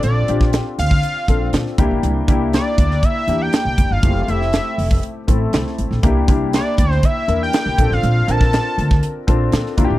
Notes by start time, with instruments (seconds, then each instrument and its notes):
Already playing: grand piano C4 D4 F4 A4
0.03 upright bass A#1, analog synth lead D5, closed hi-hat
0.28 upright bass A#1, grand piano C4 D4 F4 G4, closed hi-hat
0.41 kick, snare
0.53 snare, closed hi-hat
0.79 upright bass D2, analog synth lead F5, closed hi-hat
0.91 kick
1.03 closed hi-hat
1.28 upright bass A#1, grand piano C4 D4 F4 A4, kick, closed hi-hat
1.53 upright bass A#2, snare, closed hi-hat
1.67 snare
1.78 upright bass C2, grand piano A#3 D4 E4 G4, kick, closed hi-hat
1.91 upright bass A#1
2.03 upright bass C2, closed hi-hat
2.28 upright bass C2, grand piano A#3 D4 E4 G4, kick, closed hi-hat
2.53 analog synth lead D5, snare, closed hi-hat
2.78 upright bass D2, kick, closed hi-hat
2.91 snare
3.03 analog synth lead E5, kick, closed hi-hat
3.27 upright bass E2, grand piano A#3 D4 E4 G4, closed hi-hat
3.42 analog synth lead G5
3.53 snare, closed hi-hat
3.65 upright bass C2
3.78 upright bass F1, kick, closed hi-hat
3.91 upright bass G1, analog synth lead F5
4.03 upright bass F1, grand piano A3 C4 E4 G4, kick, closed hi-hat
4.28 upright bass F1, grand piano A3 C4 E4 G4, analog synth lead E5, closed hi-hat
4.42 snare
4.53 snare, closed hi-hat
4.78 upright bass F1, open hi-hat
4.91 kick
5.03 closed hi-hat
5.27 upright bass A1, grand piano A3 C4 E4 A4, kick, closed hi-hat
5.53 upright bass C2, snare, closed hi-hat
5.67 snare
5.78 upright bass A1, closed hi-hat
5.91 upright bass A#1, snare
6.03 upright bass C2, grand piano A#3 D4 E4 G4, kick, closed hi-hat
6.28 upright bass C2, grand piano A#3 D4 E4 G4, kick, closed hi-hat
6.53 analog synth lead D5, snare, closed hi-hat
6.78 upright bass D2, kick, closed hi-hat
6.91 analog synth lead C5, snare
7.03 analog synth lead E5, kick, closed hi-hat
7.27 upright bass E2, grand piano A#3 D4 E4 A#4, closed hi-hat
7.43 analog synth lead G5
7.53 snare, closed hi-hat
7.66 upright bass C2, snare
7.78 upright bass A#1, grand piano C4 D4 F4 A4, kick, closed hi-hat
7.91 upright bass A1, analog synth lead F5, snare
8.03 upright bass A#1, closed hi-hat
8.27 upright bass A#1, grand piano C4 D4 F4 A#4, analog synth lead A5, closed hi-hat
8.41 kick, snare
8.53 snare, closed hi-hat
8.78 upright bass D2, closed hi-hat
8.91 kick, snare
9.03 closed hi-hat
9.27 upright bass A#1, grand piano C4 D4 F4 A4, kick, closed hi-hat
9.52 upright bass A#2, snare, closed hi-hat
9.66 snare
9.77 upright bass C2, grand piano A#3 D4 E4 F4, kick, closed hi-hat
9.84 grand piano G4
9.90 upright bass A#1